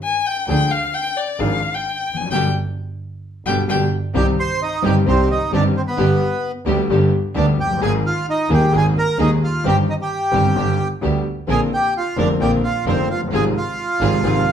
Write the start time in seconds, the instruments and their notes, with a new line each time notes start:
0.03 violin G#5
0.26 violin G5
0.48 double bass D2, grand piano D2 D3 F3 G#3 D4 G#4, string section D4 F4 G#4, violin G5
0.71 violin F5
0.94 violin G5
1.17 violin D5
1.39 grand piano G#1 G#2 F3 G#3 D4 G#4, double bass G#1, string section D4 F4 G#4, violin F5
1.75 violin G5
2.09 double bass F1
2.14 grand piano E2, violin G#5
2.21 grand piano F2
2.26 grand piano F#2
2.30 double bass G1, grand piano B2 D3 G3, string section B3 D4 G4, violin G5
3.46 double bass G1, grand piano B2 D3 G3, string section B3 D4 G4, violin G5
3.68 double bass G1, grand piano B2 D3 G3, string section B3 D4 G4, violin G5
4.14 double bass C2, grand piano C2 C3 D#3 G3 C4 G4, string section C4 D#4 G4, bandoneon G4 G5
4.39 bandoneon C5 C6
4.62 bandoneon D#4 D#5
4.82 grand piano G1 G2 D#3 G3 C4 G4, double bass G1, string section C4 D#4 G4, bandoneon G4 G5
5.06 double bass C2, grand piano C2 C3 D#3 G3 C4 G4, string section C4 D#4 G4, bandoneon C4 C5
5.31 bandoneon D#4 D#5
5.52 double bass G1, grand piano G1 G2 D#3 G3 C4 G4, string section C4 D#4 G4, bandoneon D4 D5
5.77 bandoneon C4 C5
5.87 bandoneon B3 B4
5.98 double bass G1, grand piano G1 G2 D3 G3 B3 G4, string section B3 D4 G4
6.65 double bass D2, grand piano D2 D3 G3 B3 G4, string section B3 D4 G4
6.89 double bass G1, grand piano G1 G2 D3 G3 B3 G4, string section B3 D4 G4
7.35 double bass D2, grand piano D2 D3 G3 B3 G4, string section B3 D4 G4, bandoneon D4 D5
7.57 double bass F#1, bandoneon G4 G5
7.65 grand piano F1
7.70 grand piano F#1
7.76 grand piano G1
7.80 double bass G#1, grand piano G#1 G#2 D#3 G#3 A#3 G#4, string section A#3 D#4 G#4, bandoneon G#4 G#5
8.06 bandoneon F4 F5
8.29 bandoneon D#4 D#5
8.49 grand piano D#1 D#2 D#3 G#3 A#3 G#4, double bass D#2, string section A#3 D#4 G#4
8.54 bandoneon G4 G5
8.72 grand piano G#1 G#2 D#3 G#3 A#3 G#4, double bass G#1, string section A#3 D#4 G#4, bandoneon G#4
8.77 bandoneon G#5
8.98 bandoneon A#4 A#5
9.18 grand piano D#1 D#2 D#3 G#3 A#3 G#4, double bass D#2, string section A#3 D#4 G#4, bandoneon D#4 D#5
9.43 bandoneon F4 F5
9.64 grand piano G1 G2 D#3 G3 C4 G4, double bass G1, string section C4 D#4 G4, bandoneon G4
9.68 bandoneon G5
9.89 bandoneon D#4 D#5
10.02 bandoneon G4 G5
10.32 grand piano G1 G2 D#3 G3 C4 G4, double bass G1, string section C4 D#4 G4
10.55 double bass G1, grand piano G1 G2 D3 G3 B3 G4, string section B3 D4 G4
11.02 double bass D2, grand piano D2 D3 G3 B3 G4, string section B3 D4 G4
11.48 double bass A#1, grand piano A#1 A#2 D3 A#3 C4 F4, string section C4 D4 A#4, bandoneon G#4 G#5
11.74 bandoneon G4 G5
11.97 bandoneon F4 F5
12.17 double bass F1, grand piano F1 F2 D3 A#3 C4 F4, string section C4 D4 A#4, bandoneon D4 D5
12.40 double bass A#1, grand piano A#1 A#2 D3 A#3 C4 F4, string section C4 D4 A#4, bandoneon G4 G5
12.64 bandoneon F4 F5
12.85 double bass F1, grand piano F1 F2 D3 A#3 C4 F4, string section C4 D4 A#4, bandoneon C4 C5
13.09 double bass F#1, bandoneon F4 F5
13.15 grand piano F1
13.22 grand piano F#1
13.27 grand piano G1, double bass G#1
13.32 grand piano G#1 G#2 C3 F3 G#3 F4, string section C4 F4 G#4, bandoneon G#4 G#5
13.57 bandoneon F4 F5
14.00 double bass G#1, grand piano G#1 G#2 C3 F3 G#3 F4, string section C4 F4 G#4
14.22 double bass G#1, grand piano G#1 G#2 C3 F3 G#3 F4, string section C4 F4 G#4